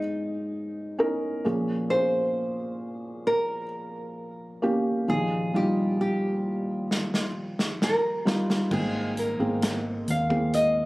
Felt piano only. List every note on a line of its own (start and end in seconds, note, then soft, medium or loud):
0.00 1.40 G#2 soft
0.00 1.40 G#3 soft
0.00 0.98 C#4 medium
0.00 0.99 D#4 soft
0.00 1.46 G#4 medium
0.98 1.42 C#4 medium
0.98 1.42 D#4 medium
0.98 1.43 A#4 medium
1.45 5.04 A#2 medium
1.45 5.04 F3 medium
1.45 1.88 A#3 medium
1.45 1.88 C#4 medium
1.45 1.88 G#4 medium
1.90 3.63 A#3 medium
1.90 3.63 C#4 medium
1.90 3.63 G#4 medium
4.62 5.06 A#3 medium
4.62 5.06 C#4 medium
4.62 5.06 G4 medium
5.08 8.68 D#2 soft
5.08 8.68 A#2 soft
5.08 5.51 F3 medium
5.08 5.51 D#4 soft
5.08 5.52 F4 medium
5.53 7.26 G3 medium
5.53 7.27 D#4 soft
5.53 7.27 F4 medium
8.25 8.69 G3 medium
8.25 8.69 D#4 medium
8.25 8.69 F4 medium
8.71 10.04 G#2 soft
8.71 10.04 D#3 soft
8.71 9.36 A#3 medium
8.71 9.37 C4 medium
8.71 9.37 G#4 medium
9.39 10.26 A#3 medium
9.39 10.26 C4 medium
9.39 10.26 G#4 medium
10.29 10.86 A#3 medium
10.29 10.86 C4 soft
10.29 10.86 G#4 medium